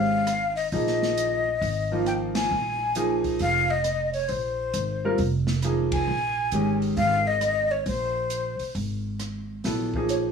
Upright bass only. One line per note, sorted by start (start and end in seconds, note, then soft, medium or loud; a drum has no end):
0.00 0.69 G#1 medium
0.72 1.58 A#1 medium
1.61 2.47 G#1 medium
2.51 3.36 A#1 medium
3.40 4.26 F1 medium
4.29 4.71 A#1 medium
4.74 5.15 G#1 medium
5.19 6.04 F1 medium
6.08 6.49 A#1 medium
6.52 6.94 G#1 medium
6.97 7.82 G#1 medium
7.86 8.56 A#1 medium
8.60 muted upright bass stroke soft
8.75 9.60 G#1 medium
9.65 10.32 A#1 medium